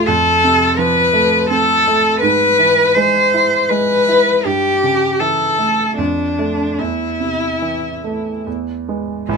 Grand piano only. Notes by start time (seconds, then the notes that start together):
Already playing: A3 D4
0.08 F2
0.44 C3
0.78 F3
1.13 A3
1.50 C4
1.87 A3
2.22 G#2
2.59 E3
2.96 G#3
3.34 E4
3.70 G#3
4.08 E4
4.45 G2
4.83 C#3
5.20 E3
5.58 A3
5.98 F2
6.39 A3 D4
6.79 E2
7.20 C3
7.62 E3
8.04 A3
8.47 E2
8.89 G#3 B3
9.29 A1